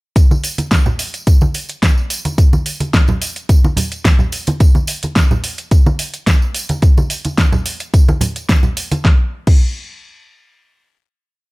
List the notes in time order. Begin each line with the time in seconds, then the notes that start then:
0.16 kick, closed hi-hat, tambourine
0.31 tambourine, high conga
0.44 open hi-hat, tambourine
0.58 closed hi-hat, tambourine, high conga
0.71 kick, snare, closed hi-hat, tambourine
0.86 tambourine, low conga
0.99 open hi-hat, tambourine
1.14 closed hi-hat, tambourine
1.27 kick, closed hi-hat, tambourine
1.41 tambourine, high conga
1.54 open hi-hat, tambourine
1.69 closed hi-hat, tambourine
1.82 kick, snare, closed hi-hat, tambourine
1.98 tambourine
2.10 open hi-hat, tambourine
2.25 closed hi-hat, tambourine, high conga
2.38 kick, closed hi-hat, tambourine
2.53 tambourine, high conga
2.66 open hi-hat, tambourine
2.80 closed hi-hat, tambourine, high conga
2.94 kick, snare, closed hi-hat, tambourine
3.08 tambourine, low conga
3.22 open hi-hat, tambourine
3.36 closed hi-hat, tambourine
3.49 kick, closed hi-hat, tambourine
3.64 tambourine, high conga
3.77 open hi-hat, tambourine, low conga
3.92 closed hi-hat, tambourine
4.05 kick, snare, closed hi-hat, tambourine
4.19 tambourine, low conga
4.32 open hi-hat, tambourine
4.47 closed hi-hat, tambourine, high conga
4.60 kick, closed hi-hat, tambourine
4.75 tambourine, high conga
4.87 open hi-hat, tambourine
5.03 closed hi-hat, tambourine, high conga
5.16 kick, snare, closed hi-hat, tambourine
5.31 tambourine, low conga
5.44 open hi-hat, tambourine
5.58 closed hi-hat, tambourine
5.71 kick, closed hi-hat, tambourine
5.86 tambourine, high conga
5.99 open hi-hat, tambourine
6.14 closed hi-hat, tambourine
6.27 kick, snare, closed hi-hat, tambourine
6.42 tambourine
6.55 open hi-hat, tambourine
6.69 closed hi-hat, tambourine, high conga
6.82 kick, closed hi-hat, tambourine
6.97 tambourine, high conga
7.10 open hi-hat, tambourine
7.25 closed hi-hat, tambourine, high conga
7.38 kick, snare, closed hi-hat, tambourine
7.52 tambourine, low conga
7.66 open hi-hat, tambourine
7.80 closed hi-hat, tambourine
7.94 kick, closed hi-hat, tambourine
8.08 tambourine, high conga
8.21 open hi-hat, tambourine, low conga
8.36 closed hi-hat, tambourine
8.49 kick, snare, closed hi-hat, tambourine
8.63 tambourine, low conga
8.77 open hi-hat, tambourine
8.92 closed hi-hat, tambourine, high conga
9.05 kick, snare
9.47 kick, crash